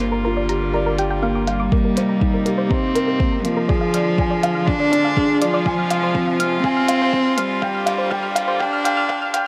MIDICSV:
0, 0, Header, 1, 7, 480
1, 0, Start_track
1, 0, Key_signature, -3, "minor"
1, 0, Tempo, 491803
1, 1681, Time_signature, 4, 2, 24, 8
1, 9244, End_track
2, 0, Start_track
2, 0, Title_t, "Synth arpeggio sound"
2, 0, Program_c, 0, 84
2, 116, Note_on_c, 0, 70, 88
2, 230, Note_off_c, 0, 70, 0
2, 242, Note_on_c, 0, 70, 92
2, 324, Note_off_c, 0, 70, 0
2, 359, Note_on_c, 0, 74, 89
2, 442, Note_off_c, 0, 74, 0
2, 479, Note_on_c, 0, 82, 67
2, 529, Note_off_c, 0, 82, 0
2, 722, Note_on_c, 0, 70, 90
2, 831, Note_off_c, 0, 70, 0
2, 843, Note_on_c, 0, 70, 98
2, 924, Note_off_c, 0, 70, 0
2, 964, Note_on_c, 0, 79, 91
2, 1045, Note_off_c, 0, 79, 0
2, 1079, Note_on_c, 0, 79, 93
2, 1194, Note_off_c, 0, 79, 0
2, 1197, Note_on_c, 0, 77, 94
2, 1281, Note_off_c, 0, 77, 0
2, 1320, Note_on_c, 0, 86, 67
2, 1370, Note_off_c, 0, 86, 0
2, 1559, Note_on_c, 0, 86, 73
2, 1642, Note_off_c, 0, 86, 0
2, 1684, Note_on_c, 0, 70, 87
2, 1792, Note_off_c, 0, 70, 0
2, 1804, Note_on_c, 0, 70, 92
2, 1885, Note_off_c, 0, 70, 0
2, 1925, Note_on_c, 0, 72, 93
2, 2005, Note_off_c, 0, 72, 0
2, 2040, Note_on_c, 0, 82, 70
2, 2090, Note_off_c, 0, 82, 0
2, 2283, Note_on_c, 0, 70, 90
2, 2385, Note_off_c, 0, 70, 0
2, 2397, Note_on_c, 0, 70, 94
2, 2481, Note_off_c, 0, 70, 0
2, 2515, Note_on_c, 0, 72, 93
2, 2600, Note_off_c, 0, 72, 0
2, 2640, Note_on_c, 0, 82, 73
2, 2690, Note_off_c, 0, 82, 0
2, 2880, Note_on_c, 0, 70, 92
2, 2994, Note_off_c, 0, 70, 0
2, 3004, Note_on_c, 0, 70, 87
2, 3085, Note_off_c, 0, 70, 0
2, 3123, Note_on_c, 0, 72, 94
2, 3204, Note_off_c, 0, 72, 0
2, 3240, Note_on_c, 0, 82, 67
2, 3290, Note_off_c, 0, 82, 0
2, 3482, Note_on_c, 0, 70, 102
2, 3595, Note_off_c, 0, 70, 0
2, 3596, Note_on_c, 0, 74, 91
2, 3681, Note_off_c, 0, 74, 0
2, 3718, Note_on_c, 0, 77, 98
2, 3802, Note_off_c, 0, 77, 0
2, 3847, Note_on_c, 0, 89, 73
2, 3893, Note_off_c, 0, 89, 0
2, 4086, Note_on_c, 0, 74, 98
2, 4191, Note_off_c, 0, 74, 0
2, 4203, Note_on_c, 0, 74, 96
2, 4284, Note_off_c, 0, 74, 0
2, 4325, Note_on_c, 0, 77, 96
2, 4405, Note_off_c, 0, 77, 0
2, 4441, Note_on_c, 0, 89, 71
2, 4490, Note_off_c, 0, 89, 0
2, 4683, Note_on_c, 0, 74, 105
2, 4790, Note_off_c, 0, 74, 0
2, 4802, Note_on_c, 0, 74, 94
2, 4883, Note_off_c, 0, 74, 0
2, 4924, Note_on_c, 0, 77, 96
2, 5004, Note_off_c, 0, 77, 0
2, 5044, Note_on_c, 0, 89, 79
2, 5092, Note_off_c, 0, 89, 0
2, 5287, Note_on_c, 0, 74, 94
2, 5393, Note_off_c, 0, 74, 0
2, 5405, Note_on_c, 0, 74, 100
2, 5485, Note_off_c, 0, 74, 0
2, 5528, Note_on_c, 0, 77, 80
2, 5606, Note_off_c, 0, 77, 0
2, 5648, Note_on_c, 0, 89, 65
2, 5694, Note_off_c, 0, 89, 0
2, 5888, Note_on_c, 0, 72, 84
2, 5994, Note_off_c, 0, 72, 0
2, 6005, Note_on_c, 0, 72, 88
2, 6085, Note_off_c, 0, 72, 0
2, 6126, Note_on_c, 0, 77, 87
2, 6205, Note_off_c, 0, 77, 0
2, 6245, Note_on_c, 0, 89, 67
2, 6292, Note_off_c, 0, 89, 0
2, 6484, Note_on_c, 0, 77, 92
2, 6564, Note_off_c, 0, 77, 0
2, 6604, Note_on_c, 0, 89, 72
2, 6652, Note_off_c, 0, 89, 0
2, 6849, Note_on_c, 0, 72, 92
2, 6955, Note_off_c, 0, 72, 0
2, 6966, Note_on_c, 0, 72, 89
2, 7046, Note_off_c, 0, 72, 0
2, 7079, Note_on_c, 0, 77, 88
2, 7162, Note_off_c, 0, 77, 0
2, 7200, Note_on_c, 0, 89, 68
2, 7250, Note_off_c, 0, 89, 0
2, 7435, Note_on_c, 0, 77, 89
2, 7520, Note_off_c, 0, 77, 0
2, 7560, Note_on_c, 0, 89, 71
2, 7610, Note_off_c, 0, 89, 0
2, 7789, Note_on_c, 0, 72, 95
2, 7896, Note_off_c, 0, 72, 0
2, 7910, Note_on_c, 0, 77, 102
2, 7997, Note_off_c, 0, 77, 0
2, 8030, Note_on_c, 0, 89, 73
2, 8085, Note_off_c, 0, 89, 0
2, 8273, Note_on_c, 0, 72, 100
2, 8378, Note_off_c, 0, 72, 0
2, 8396, Note_on_c, 0, 77, 105
2, 8481, Note_off_c, 0, 77, 0
2, 8519, Note_on_c, 0, 89, 83
2, 8569, Note_off_c, 0, 89, 0
2, 8639, Note_on_c, 0, 77, 104
2, 8722, Note_off_c, 0, 77, 0
2, 8753, Note_on_c, 0, 89, 81
2, 8806, Note_off_c, 0, 89, 0
2, 8873, Note_on_c, 0, 77, 101
2, 8959, Note_off_c, 0, 77, 0
2, 8996, Note_on_c, 0, 89, 74
2, 9048, Note_off_c, 0, 89, 0
2, 9112, Note_on_c, 0, 77, 107
2, 9199, Note_off_c, 0, 77, 0
2, 9244, End_track
3, 0, Start_track
3, 0, Title_t, "Felt piano"
3, 0, Program_c, 1, 0
3, 0, Control_c, 1, 64, 127
3, 0, Note_on_c, 1, 58, 62
3, 228, Note_off_c, 1, 58, 0
3, 247, Note_on_c, 1, 65, 65
3, 472, Note_off_c, 1, 65, 0
3, 478, Note_on_c, 1, 67, 63
3, 708, Note_off_c, 1, 67, 0
3, 716, Note_on_c, 1, 74, 74
3, 946, Note_off_c, 1, 74, 0
3, 958, Note_on_c, 1, 67, 66
3, 1097, Note_off_c, 1, 67, 0
3, 1193, Note_on_c, 1, 58, 85
3, 1425, Note_off_c, 1, 58, 0
3, 1438, Note_on_c, 1, 77, 88
3, 1668, Note_off_c, 1, 77, 0
3, 1682, Note_on_c, 1, 58, 79
3, 1693, Control_c, 1, 64, 0
3, 1886, Control_c, 1, 64, 127
3, 1909, Note_off_c, 1, 58, 0
3, 1923, Note_on_c, 1, 58, 65
3, 2150, Note_off_c, 1, 58, 0
3, 2166, Note_on_c, 1, 63, 64
3, 2392, Note_off_c, 1, 63, 0
3, 2409, Note_on_c, 1, 67, 61
3, 2633, Note_off_c, 1, 67, 0
3, 2651, Note_on_c, 1, 72, 75
3, 2874, Note_off_c, 1, 72, 0
3, 2887, Note_on_c, 1, 70, 80
3, 3112, Note_off_c, 1, 70, 0
3, 3126, Note_on_c, 1, 58, 66
3, 3350, Note_off_c, 1, 58, 0
3, 3365, Note_on_c, 1, 58, 67
3, 3591, Note_off_c, 1, 58, 0
3, 3604, Note_on_c, 1, 68, 81
3, 3615, Control_c, 1, 64, 0
3, 3812, Control_c, 1, 64, 127
3, 3830, Note_off_c, 1, 68, 0
3, 3844, Note_on_c, 1, 74, 66
3, 4071, Note_off_c, 1, 74, 0
3, 4090, Note_on_c, 1, 80, 70
3, 4313, Note_off_c, 1, 80, 0
3, 4328, Note_on_c, 1, 77, 86
3, 4553, Note_off_c, 1, 77, 0
3, 4570, Note_on_c, 1, 62, 77
3, 4789, Note_off_c, 1, 62, 0
3, 4804, Note_on_c, 1, 62, 68
3, 5030, Note_off_c, 1, 62, 0
3, 5047, Note_on_c, 1, 68, 67
3, 5272, Note_off_c, 1, 68, 0
3, 5288, Note_on_c, 1, 74, 67
3, 5513, Note_off_c, 1, 74, 0
3, 5520, Note_on_c, 1, 80, 73
3, 5533, Control_c, 1, 64, 0
3, 5677, Control_c, 1, 64, 127
3, 5749, Note_off_c, 1, 80, 0
3, 5763, Note_on_c, 1, 77, 87
3, 5990, Note_off_c, 1, 77, 0
3, 6001, Note_on_c, 1, 60, 71
3, 6223, Note_off_c, 1, 60, 0
3, 6238, Note_on_c, 1, 60, 65
3, 6460, Note_off_c, 1, 60, 0
3, 6482, Note_on_c, 1, 80, 79
3, 6710, Note_off_c, 1, 80, 0
3, 6720, Note_on_c, 1, 77, 85
3, 6948, Note_off_c, 1, 77, 0
3, 6962, Note_on_c, 1, 60, 70
3, 7186, Note_off_c, 1, 60, 0
3, 7201, Note_on_c, 1, 60, 70
3, 7422, Note_off_c, 1, 60, 0
3, 7443, Note_on_c, 1, 79, 84
3, 7455, Control_c, 1, 64, 0
3, 7650, Control_c, 1, 64, 127
3, 7670, Note_off_c, 1, 79, 0
3, 7673, Note_on_c, 1, 77, 98
3, 7898, Note_off_c, 1, 77, 0
3, 7914, Note_on_c, 1, 79, 83
3, 8146, Note_off_c, 1, 79, 0
3, 8153, Note_on_c, 1, 77, 94
3, 8378, Note_off_c, 1, 77, 0
3, 8390, Note_on_c, 1, 79, 84
3, 8616, Note_off_c, 1, 79, 0
3, 8633, Note_on_c, 1, 79, 86
3, 8856, Note_off_c, 1, 79, 0
3, 8870, Note_on_c, 1, 79, 87
3, 9096, Note_off_c, 1, 79, 0
3, 9117, Note_on_c, 1, 79, 83
3, 9244, Note_off_c, 1, 79, 0
3, 9244, End_track
4, 0, Start_track
4, 0, Title_t, "Cello"
4, 0, Program_c, 2, 42
4, 1432, Note_on_c, 2, 55, 82
4, 2632, Note_on_c, 2, 60, 92
4, 2647, Note_off_c, 2, 55, 0
4, 3348, Note_on_c, 2, 53, 94
4, 3363, Note_off_c, 2, 60, 0
4, 4554, Note_on_c, 2, 62, 105
4, 4568, Note_off_c, 2, 53, 0
4, 5278, Note_on_c, 2, 53, 97
4, 5293, Note_off_c, 2, 62, 0
4, 6467, Note_off_c, 2, 53, 0
4, 6473, Note_on_c, 2, 60, 103
4, 7205, Note_on_c, 2, 55, 98
4, 7220, Note_off_c, 2, 60, 0
4, 8408, Note_on_c, 2, 62, 91
4, 8422, Note_off_c, 2, 55, 0
4, 9124, Note_off_c, 2, 62, 0
4, 9244, End_track
5, 0, Start_track
5, 0, Title_t, "String quartet"
5, 0, Program_c, 3, 48
5, 0, Note_on_c, 3, 50, 68
5, 0, Note_on_c, 3, 55, 65
5, 0, Note_on_c, 3, 58, 60
5, 0, Note_on_c, 3, 65, 73
5, 1642, Note_off_c, 3, 65, 0
5, 1662, Note_off_c, 3, 50, 0
5, 1662, Note_off_c, 3, 55, 0
5, 1663, Note_off_c, 3, 58, 0
5, 1692, Note_on_c, 3, 55, 62
5, 1693, Note_on_c, 3, 48, 71
5, 1694, Note_on_c, 3, 63, 70
5, 1699, Note_on_c, 3, 58, 58
5, 3588, Note_off_c, 3, 48, 0
5, 3588, Note_off_c, 3, 55, 0
5, 3588, Note_off_c, 3, 63, 0
5, 3591, Note_off_c, 3, 58, 0
5, 3605, Note_on_c, 3, 50, 74
5, 3605, Note_on_c, 3, 65, 85
5, 3607, Note_on_c, 3, 53, 66
5, 3611, Note_on_c, 3, 56, 66
5, 5504, Note_off_c, 3, 50, 0
5, 5526, Note_on_c, 3, 48, 75
5, 7406, Note_off_c, 3, 53, 0
5, 7408, Note_off_c, 3, 56, 0
5, 7424, Note_off_c, 3, 48, 0
5, 7454, Note_on_c, 3, 58, 74
5, 7456, Note_on_c, 3, 50, 81
5, 7461, Note_on_c, 3, 55, 75
5, 9244, Note_off_c, 3, 50, 0
5, 9244, Note_off_c, 3, 55, 0
5, 9244, Note_off_c, 3, 58, 0
5, 9244, Note_off_c, 3, 65, 0
5, 9244, End_track
6, 0, Start_track
6, 0, Title_t, "Sub bass"
6, 0, Program_c, 4, 38
6, 0, Note_on_c, 4, 31, 82
6, 1656, Note_off_c, 4, 31, 0
6, 9244, End_track
7, 0, Start_track
7, 0, Title_t, "Drums"
7, 0, Note_on_c, 9, 42, 50
7, 98, Note_off_c, 9, 42, 0
7, 480, Note_on_c, 9, 42, 48
7, 578, Note_off_c, 9, 42, 0
7, 962, Note_on_c, 9, 42, 49
7, 1059, Note_off_c, 9, 42, 0
7, 1439, Note_on_c, 9, 42, 52
7, 1537, Note_off_c, 9, 42, 0
7, 1679, Note_on_c, 9, 36, 88
7, 1777, Note_off_c, 9, 36, 0
7, 1921, Note_on_c, 9, 42, 52
7, 2019, Note_off_c, 9, 42, 0
7, 2160, Note_on_c, 9, 36, 91
7, 2258, Note_off_c, 9, 36, 0
7, 2401, Note_on_c, 9, 42, 53
7, 2498, Note_off_c, 9, 42, 0
7, 2641, Note_on_c, 9, 36, 99
7, 2739, Note_off_c, 9, 36, 0
7, 2884, Note_on_c, 9, 42, 51
7, 2982, Note_off_c, 9, 42, 0
7, 3123, Note_on_c, 9, 36, 93
7, 3220, Note_off_c, 9, 36, 0
7, 3365, Note_on_c, 9, 42, 61
7, 3462, Note_off_c, 9, 42, 0
7, 3603, Note_on_c, 9, 36, 92
7, 3701, Note_off_c, 9, 36, 0
7, 3845, Note_on_c, 9, 42, 58
7, 3942, Note_off_c, 9, 42, 0
7, 4082, Note_on_c, 9, 36, 105
7, 4180, Note_off_c, 9, 36, 0
7, 4328, Note_on_c, 9, 42, 58
7, 4425, Note_off_c, 9, 42, 0
7, 4563, Note_on_c, 9, 36, 101
7, 4661, Note_off_c, 9, 36, 0
7, 4810, Note_on_c, 9, 42, 60
7, 4908, Note_off_c, 9, 42, 0
7, 5043, Note_on_c, 9, 36, 100
7, 5140, Note_off_c, 9, 36, 0
7, 5286, Note_on_c, 9, 42, 63
7, 5384, Note_off_c, 9, 42, 0
7, 5522, Note_on_c, 9, 36, 99
7, 5620, Note_off_c, 9, 36, 0
7, 5763, Note_on_c, 9, 42, 60
7, 5861, Note_off_c, 9, 42, 0
7, 6001, Note_on_c, 9, 36, 107
7, 6098, Note_off_c, 9, 36, 0
7, 6246, Note_on_c, 9, 42, 63
7, 6343, Note_off_c, 9, 42, 0
7, 6480, Note_on_c, 9, 36, 102
7, 6577, Note_off_c, 9, 36, 0
7, 6719, Note_on_c, 9, 42, 65
7, 6817, Note_off_c, 9, 42, 0
7, 6960, Note_on_c, 9, 36, 105
7, 7058, Note_off_c, 9, 36, 0
7, 7200, Note_on_c, 9, 42, 70
7, 7298, Note_off_c, 9, 42, 0
7, 7439, Note_on_c, 9, 36, 104
7, 7537, Note_off_c, 9, 36, 0
7, 7680, Note_on_c, 9, 42, 61
7, 7777, Note_off_c, 9, 42, 0
7, 7918, Note_on_c, 9, 36, 109
7, 8016, Note_off_c, 9, 36, 0
7, 8161, Note_on_c, 9, 42, 65
7, 8258, Note_off_c, 9, 42, 0
7, 8398, Note_on_c, 9, 36, 109
7, 8495, Note_off_c, 9, 36, 0
7, 8641, Note_on_c, 9, 42, 61
7, 8739, Note_off_c, 9, 42, 0
7, 8877, Note_on_c, 9, 36, 112
7, 8975, Note_off_c, 9, 36, 0
7, 9116, Note_on_c, 9, 42, 67
7, 9213, Note_off_c, 9, 42, 0
7, 9244, End_track
0, 0, End_of_file